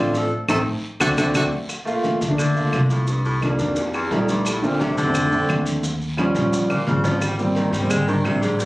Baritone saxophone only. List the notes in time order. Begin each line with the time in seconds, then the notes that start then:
Already playing: D3
0.16 F3
0.50 D#3
1.01 D3
1.18 D3
1.36 D3
2.39 D3
2.90 A2
3.08 G2
3.25 A2
3.43 F2
3.59 D2
3.78 D#2
3.94 E2
4.12 F2
4.29 G2
4.46 A2
4.63 A#2
4.80 C3
4.97 D3
6.70 A#2
6.88 C#3
7.04 F3
7.22 G3
7.38 A#2
7.56 D#3
7.72 G3
7.90 G#3
8.08 D#3
8.25 C3
8.42 G#2
8.60 G2